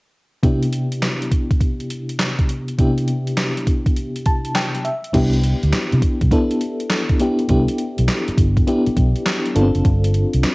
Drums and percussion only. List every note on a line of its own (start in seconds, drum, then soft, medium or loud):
0.43 kick loud
0.43 closed hi-hat medium
0.63 closed hi-hat medium
0.73 closed hi-hat medium
0.92 closed hi-hat medium
1.02 snare loud
1.02 clap medium
1.02 closed hi-hat medium
1.22 closed hi-hat soft
1.31 kick medium
1.31 closed hi-hat medium
1.51 kick medium
1.51 closed hi-hat soft
1.61 kick medium
1.61 closed hi-hat medium
1.80 closed hi-hat soft
1.90 closed hi-hat medium
2.09 closed hi-hat soft
2.19 snare loud
2.19 clap medium
2.19 closed hi-hat medium
2.39 kick medium
2.39 closed hi-hat soft
2.49 closed hi-hat medium
2.68 closed hi-hat soft
2.79 kick loud
2.79 closed hi-hat medium
2.98 closed hi-hat medium
3.08 closed hi-hat medium
3.27 closed hi-hat medium
3.37 snare loud
3.37 clap medium
3.37 closed hi-hat medium
3.57 closed hi-hat soft
3.67 kick medium
3.67 closed hi-hat medium
3.86 kick medium
3.86 closed hi-hat soft
3.97 closed hi-hat medium
4.16 closed hi-hat soft
4.26 kick medium
4.26 closed hi-hat medium
4.45 closed hi-hat soft
4.55 snare loud
4.55 clap medium
4.55 closed hi-hat medium
4.75 closed hi-hat soft
4.85 closed hi-hat medium
5.04 closed hi-hat soft
5.14 kick loud
5.14 closed hi-hat medium
5.14 crash medium
5.33 closed hi-hat medium
5.44 closed hi-hat medium
5.63 closed hi-hat medium
5.73 snare loud
5.73 clap medium
5.73 closed hi-hat medium
5.92 closed hi-hat medium
6.02 kick medium
6.02 closed hi-hat medium
6.21 kick loud
6.21 closed hi-hat soft
6.31 kick loud
6.31 closed hi-hat medium
6.51 closed hi-hat soft
6.61 closed hi-hat medium
6.80 closed hi-hat soft
6.90 snare loud
6.90 clap medium
6.90 closed hi-hat medium
7.09 kick medium
7.09 closed hi-hat soft
7.20 closed hi-hat medium
7.39 closed hi-hat soft
7.49 kick loud
7.49 closed hi-hat medium
7.68 closed hi-hat medium
7.78 closed hi-hat medium
7.98 closed hi-hat medium
8.08 snare medium
8.08 clap medium
8.08 closed hi-hat medium
8.28 closed hi-hat soft
8.38 kick medium
8.38 closed hi-hat medium
8.57 kick loud
8.57 closed hi-hat soft
8.68 closed hi-hat medium
8.86 closed hi-hat soft
8.97 kick medium
8.97 closed hi-hat medium
9.16 closed hi-hat soft
9.26 snare loud
9.26 clap medium
9.26 closed hi-hat medium
9.46 closed hi-hat soft
9.56 closed hi-hat medium
9.75 closed hi-hat soft
9.85 kick loud
9.85 closed hi-hat medium
10.04 closed hi-hat medium
10.14 closed hi-hat medium
10.33 closed hi-hat medium
10.43 snare loud
10.43 clap medium
10.43 closed hi-hat medium